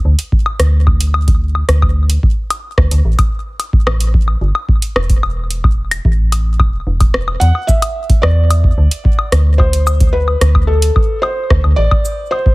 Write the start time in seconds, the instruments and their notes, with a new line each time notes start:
0.05 fm bass D2
0.19 closed hi-hat
0.32 kick
0.46 high woodblock
0.60 fm bass D2, cross-stick, closed hi-hat
0.87 kick, high woodblock
1.00 closed hi-hat
1.14 high woodblock
1.28 kick, closed hi-hat
1.55 high woodblock
1.69 fm bass D2, cross-stick, closed hi-hat
1.82 kick, high woodblock
2.10 closed hi-hat
2.23 kick
2.50 closed hi-hat, high woodblock
2.78 fm bass D2, kick, cross-stick
2.91 fm bass D2, closed hi-hat
3.05 fm bass A1
3.19 kick, closed hi-hat, high woodblock
3.60 closed hi-hat, high woodblock
3.73 kick
3.87 fm bass A1, cross-stick, high woodblock
4.00 closed hi-hat
4.14 kick
4.28 high woodblock
4.41 fm bass G1
4.55 high woodblock
4.69 kick
4.82 closed hi-hat
4.96 fm bass E1, cross-stick, high woodblock
5.10 kick, closed hi-hat
5.23 high woodblock
5.50 closed hi-hat
5.64 kick, high woodblock
5.91 closed hi-hat, high woodblock
6.05 fm bass A1, kick
6.32 closed hi-hat, high woodblock
6.60 fm bass E1, kick, high woodblock
6.87 fm bass E1
7.00 kick, closed hi-hat, high woodblock
7.14 cross-stick
7.28 high woodblock
7.40 fm bass E2, felt piano F#5, closed hi-hat
7.55 high woodblock
7.67 felt piano E5, kick, cabasa
7.82 closed hi-hat, high woodblock
8.10 kick, closed hi-hat
8.22 fm bass E2, felt piano D5, cross-stick, high woodblock
8.51 closed hi-hat, high woodblock
8.64 kick
8.78 fm bass D2
8.91 closed hi-hat
9.05 kick
9.19 high woodblock
9.32 fm bass D2, cross-stick, closed hi-hat
9.58 felt piano C5, kick, high woodblock
9.73 closed hi-hat
9.87 cabasa, high woodblock
10.00 kick, closed hi-hat
10.13 felt piano B4
10.28 high woodblock
10.41 fm bass D2, cross-stick, closed hi-hat
10.55 kick, high woodblock
10.67 felt piano A4
10.82 closed hi-hat
10.96 kick, high woodblock
11.22 felt piano C5, high woodblock
11.50 fm bass D2, kick, cross-stick
11.64 fm bass D2, high woodblock
11.76 fm bass A1, felt piano D5
11.91 kick, high woodblock
12.05 cabasa
12.31 felt piano C5, high woodblock
12.46 kick